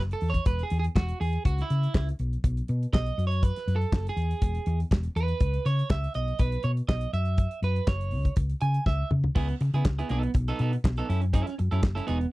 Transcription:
Already playing: fingered electric bass F#1
0.11 clean electric guitar A4, closed hi-hat
0.21 fingered electric bass E2, open hi-hat
0.30 clean electric guitar C#5
0.34 kick, closed hi-hat
0.46 fingered electric bass E1, clean electric guitar B4, kick, closed hi-hat
0.59 closed hi-hat
0.63 clean electric guitar G#4
0.70 fingered electric bass E2, closed hi-hat
0.79 clean electric guitar G#4
0.84 closed hi-hat
0.96 fingered electric bass E1, clean electric guitar F#4, kick, snare, clap
1.09 closed hi-hat
1.21 fingered electric bass E2, clean electric guitar G#4, open hi-hat
1.33 closed hi-hat
1.45 fingered electric bass C#2, clean electric guitar F#4, kick, closed hi-hat
1.58 clean electric guitar E4, snare, closed hi-hat
1.70 fingered electric bass C#3, closed hi-hat
1.83 closed hi-hat
1.94 fingered electric bass C#2, kick, snare, clap
2.09 closed hi-hat
2.19 fingered electric bass B1, closed hi-hat
2.33 closed hi-hat
2.44 fingered electric bass B1, kick, closed hi-hat
2.57 closed hi-hat
2.68 fingered electric bass B2, closed hi-hat
2.83 closed hi-hat
2.93 fingered electric bass B1, clean electric guitar D#5, kick, snare, clap
3.06 closed hi-hat
3.18 fingered electric bass F#2, closed hi-hat
3.27 clean electric guitar C#5
3.31 closed hi-hat
3.43 clean electric guitar B4, kick, closed hi-hat
3.56 snare, closed hi-hat
3.68 fingered electric bass F#2, closed hi-hat
3.76 clean electric guitar A4
3.81 closed hi-hat
3.92 fingered electric bass F#1, kick, snare, clap
4.07 clean electric guitar G#4, closed hi-hat
4.17 fingered electric bass E2, closed hi-hat
4.31 closed hi-hat
4.42 fingered electric bass E1, kick, closed hi-hat
4.55 closed hi-hat
4.66 fingered electric bass E2, closed hi-hat
4.80 closed hi-hat
4.91 fingered electric bass E1, kick, snare, clap
5.03 closed hi-hat
5.16 fingered electric bass E2, clean electric guitar B4, closed hi-hat
5.28 closed hi-hat
5.40 fingered electric bass C#2, kick, closed hi-hat
5.54 closed hi-hat
5.66 fingered electric bass C#3, clean electric guitar C#5, closed hi-hat
5.79 closed hi-hat
5.90 fingered electric bass C#2, clean electric guitar E5, kick, snare, clap
6.04 closed hi-hat
6.14 fingered electric bass B1, clean electric guitar D#5, closed hi-hat
6.28 closed hi-hat
6.39 fingered electric bass B1, clean electric guitar B4, kick, closed hi-hat
6.52 closed hi-hat
6.63 fingered electric bass B2, clean electric guitar C#5, closed hi-hat
6.77 closed hi-hat
6.88 fingered electric bass B1, clean electric guitar D#5, kick, snare, clap
7.01 closed hi-hat
7.13 fingered electric bass F#2, clean electric guitar E5, closed hi-hat
7.25 closed hi-hat
7.38 kick, closed hi-hat
7.51 closed hi-hat
7.62 fingered electric bass F#2, clean electric guitar B4, closed hi-hat
7.76 closed hi-hat
7.87 fingered electric bass F#1, clean electric guitar C#5, kick, snare, clap
8.01 closed hi-hat
8.11 fingered electric bass C#2, open hi-hat
8.25 kick, closed hi-hat
8.36 fingered electric bass C#2, kick, closed hi-hat
8.50 closed hi-hat
8.61 fingered electric bass C#3, clean electric guitar G#5, closed hi-hat
8.74 closed hi-hat
8.86 fingered electric bass C#2, clean electric guitar E5, kick, snare
9.11 fingered electric bass C#3, mid tom
9.24 floor tom
9.35 fingered electric bass C#2, clean electric guitar B3 E4 G#4, kick, crash
9.49 muted clean electric guitar stroke, closed hi-hat
9.61 fingered electric bass C#3, muted clean electric guitar stroke, closed hi-hat
9.74 fingered electric bass C#3, clean electric guitar B3 E4 G#4, closed hi-hat
9.85 fingered electric bass C#2, kick, snare, clap
9.99 clean electric guitar B3 E4 G#4, closed hi-hat
10.09 fingered electric bass B1, clean electric guitar B3 D#4 A4, closed hi-hat
10.23 muted clean electric guitar stroke, closed hi-hat
10.34 fingered electric bass B1, muted clean electric guitar stroke, kick, closed hi-hat
10.48 clean electric guitar B3 D#4 A4, closed hi-hat
10.59 fingered electric bass B2, clean electric guitar B3 D#4 A4, closed hi-hat
10.73 muted clean electric guitar stroke, closed hi-hat
10.84 fingered electric bass B1, muted clean electric guitar stroke, kick, snare, clap
10.97 clean electric guitar B3 D#4 A4, closed hi-hat
11.09 fingered electric bass F#2, clean electric guitar C#4 E4 A4, closed hi-hat
11.21 muted clean electric guitar stroke, closed hi-hat
11.33 clean electric guitar C#4 E4 A4, kick, closed hi-hat
11.47 muted clean electric guitar stroke, snare, closed hi-hat
11.58 fingered electric bass F#2, muted clean electric guitar stroke, closed hi-hat
11.71 fingered electric bass F#2, clean electric guitar C#4 E4 A4, closed hi-hat
11.83 fingered electric bass F#1, kick, snare, clap
11.95 clean electric guitar C#4 E4 A4, closed hi-hat
12.07 fingered electric bass E1, clean electric guitar B3 D#4 G#4, closed hi-hat
12.20 muted clean electric guitar stroke, closed hi-hat

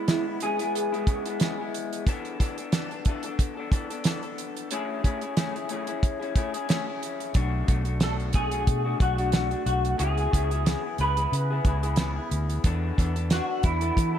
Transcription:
Already playing: clean electric guitar E4
0.08 clean electric guitar C#3 G#3 B3 E4, snare, closed hi-hat
0.26 clean electric guitar G#3 B3 E4
0.40 clean electric guitar C#3 G#3 B3 E4 G#4, closed hi-hat
0.59 clean electric guitar G#3 B3 E4, closed hi-hat
0.75 closed hi-hat
0.93 clean electric guitar G#3 B3 E4, closed hi-hat
1.06 clean electric guitar C#3 G#3 B3 E4, kick, closed hi-hat
1.26 clean electric guitar G#3 B3 E4, closed hi-hat
1.40 clean electric guitar C#3 G#3 B3 E4, snare, closed hi-hat
1.59 clean electric guitar G#3 B3 E4
1.74 closed hi-hat
1.93 closed hi-hat
2.07 clean electric guitar E3 B3 D4 A4, kick, closed hi-hat
2.25 closed hi-hat
2.39 clean electric guitar E3 B3 D4 A4, kick, closed hi-hat
2.57 clean electric guitar B3 D4 A4, closed hi-hat
2.72 clean electric guitar E3 B3 D4 A4, snare, closed hi-hat
2.91 clean electric guitar B3 D4 A4, closed hi-hat
3.05 clean electric guitar E3 B3 D4, kick, closed hi-hat
3.09 clean electric guitar A4
3.23 clean electric guitar D4 A4, closed hi-hat
3.27 clean electric guitar B3
3.39 kick, closed hi-hat
3.57 clean electric guitar B3 D4 A4
3.71 clean electric guitar E3 B3 D4 A4, kick, closed hi-hat
3.90 clean electric guitar B3 D4 A4, closed hi-hat
4.04 clean electric guitar E3 B3 D4 A4, snare, closed hi-hat
4.23 clean electric guitar B3 D4 A4, closed hi-hat
4.38 closed hi-hat
4.57 closed hi-hat
4.71 clean electric guitar A3 C#4 E4 G#4, closed hi-hat
5.03 clean electric guitar A3 C#4 E4 G#4, kick, closed hi-hat
5.21 clean electric guitar C#4 E4 G#4, closed hi-hat
5.37 clean electric guitar A3 C#4 E4 G#4, snare, closed hi-hat
5.54 clean electric guitar C#4 E4 G#4, closed hi-hat
5.69 clean electric guitar A3 C#4 E4 G#4, closed hi-hat
5.87 clean electric guitar C#4 E4 G#4, closed hi-hat
6.03 kick, closed hi-hat
6.20 clean electric guitar C#4 E4 G#4, closed hi-hat
6.36 clean electric guitar A3 C#4 E4 G#4, kick, closed hi-hat
6.53 clean electric guitar C#4 E4 G#4, closed hi-hat
6.69 clean electric guitar A3 C#4 E4 G#4, snare, closed hi-hat
6.87 clean electric guitar C#4 E4 G#4
7.03 closed hi-hat
7.20 closed hi-hat
7.34 fingered electric bass B1, clean electric guitar B2 A3 D4 F#4, kick, closed hi-hat
7.67 fingered electric bass B1, clean electric guitar B2 A3 D4 F#4, kick, closed hi-hat
7.85 clean electric guitar A3 D4 F#4, closed hi-hat
8.00 clean electric guitar B2 A3 D4 F#4 A4, snare, closed hi-hat
8.20 closed hi-hat
8.33 clean electric guitar B2 A3 D4 F#4 G#4, kick, closed hi-hat
8.51 clean electric guitar A3 D4 F#4, closed hi-hat
8.67 fingered electric bass B2, kick, closed hi-hat
8.85 clean electric guitar A3 D4 F#4
8.99 fingered electric bass B1, clean electric guitar B2 A3 D4 F#4, kick, closed hi-hat
9.18 clean electric guitar A3 D4 F#4, closed hi-hat
9.32 clean electric guitar B2 A3 D4 F#4, snare, closed hi-hat
9.51 clean electric guitar A3 D4 F#4, closed hi-hat
9.66 fingered electric bass B1, clean electric guitar F#4, closed hi-hat
9.85 closed hi-hat
9.98 fingered electric bass C#2, clean electric guitar C#3 B3 E4 G#4, closed hi-hat
10.18 closed hi-hat
10.31 fingered electric bass C#2, clean electric guitar C#3 B3 E4 G#4, kick, closed hi-hat
10.51 clean electric guitar B3 E4 G#4, closed hi-hat
10.65 clean electric guitar C#3 B3 E4 G#4, snare, closed hi-hat
10.84 clean electric guitar B3 E4 G#4
10.98 fingered electric bass C#2, clean electric guitar C#3 B3 E4 G#4 B4, closed hi-hat
11.16 clean electric guitar B3 E4 G#4, closed hi-hat
11.32 fingered electric bass C#3, closed hi-hat
11.50 clean electric guitar B3 E4 G#4
11.65 fingered electric bass C#2, clean electric guitar C#3 B3 E4 G#4, kick, closed hi-hat
11.83 clean electric guitar B3 E4 G#4, closed hi-hat
11.96 clean electric guitar C#3 B3 E4, snare, closed hi-hat
12.01 clean electric guitar G#4
12.16 clean electric guitar B3 E4 G#4
12.31 fingered electric bass D2, closed hi-hat
12.50 closed hi-hat
12.64 fingered electric bass E2, clean electric guitar E3 B3 D4 A4, kick, closed hi-hat
12.96 fingered electric bass E2, clean electric guitar E3 B3 D4 A4, kick, closed hi-hat
13.15 clean electric guitar B3 D4 A4, closed hi-hat
13.30 clean electric guitar E3 B3 D4 F#4 A4, snare, closed hi-hat
13.49 clean electric guitar B3 D4 A4
13.63 fingered electric bass E2, clean electric guitar E3 B3 D4 E4 A4, kick, closed hi-hat
13.81 clean electric guitar B3 D4 A4, closed hi-hat
13.96 fingered electric bass E3, kick, closed hi-hat
14.15 clean electric guitar A4

